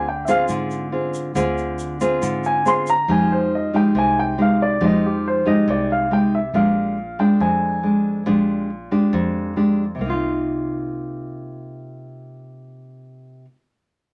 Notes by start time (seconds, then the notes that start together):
Already playing: D2 D3
0.09 G5
0.25 C4 F4 G#4 E5, shaker
0.30 F5
0.48 G#2 D3, shaker
0.71 shaker
0.92 C4 F4 G#4
1.14 shaker
1.35 D2 D3 C4 F4 G#4, shaker
1.58 shaker
1.79 shaker
2.01 C4 F4 G#4, shaker
2.22 G#2 D3, shaker
2.44 G#5, shaker
2.65 C4 F4 G#4 C6, shaker
2.87 A#5, shaker
3.08 F2 F3 G#3 D#4 G4 G#5
3.32 C5
3.55 D#5
3.73 G#3 D#4 G4 G5
3.95 C2 C3 G#5
4.19 G5
4.38 G#3 D#4 G4 F5
4.62 D5
4.81 F2 F3 G#3 D#4 G4
4.85 D#5
5.06 G4
5.28 C5
5.46 G#3 D#4 G4 D#5
5.67 C2 C3 D5
5.92 F5
6.11 G#3 D#4 G4 G5
6.35 E5
6.53 A#1 A#2 G#3 D4 G4 F5
7.19 G#3 D4 G5
7.40 F2 G#5
7.83 G#3 D4
8.26 A#1 A#2 G#3 D4 G4
8.91 G#3 D4 G4
9.13 F2
9.56 G#3 D4 G4
9.95 C3
9.99 C2 A#3
10.06 D#4
10.10 F4